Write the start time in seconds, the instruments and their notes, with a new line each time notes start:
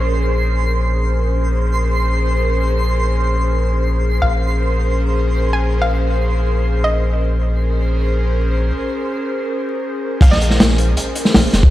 Already playing: sub bass A#1, analog synth pad C#4 G#4 A#4 C5, synth texture C6
1.21 analog synth pad C#4 G#4 A#4 C5
4.21 sub bass A#1, analog synth pad C#4 G#4 A#4 C5, synth pluck F5
5.53 synth pluck G#5
5.82 synth pluck F5
6.84 synth pluck D#5
7.21 analog synth pad C#4 G#4 A#4 C5
10.21 sub bass A#1, analog synth pad C#4 G#4 A#4 C5, synth pluck F5, kick, closed hi-hat, crash
10.31 synth pluck D#5, snare
10.41 closed hi-hat
10.50 snare
10.60 snare, closed hi-hat
10.69 snare
10.78 closed hi-hat
10.97 closed hi-hat
11.15 analog synth pad C#4 G#4 A#4 C5, closed hi-hat
11.25 snare
11.34 sub bass A#1, snare, open hi-hat
11.53 sub bass F1, snare, closed hi-hat
11.63 kick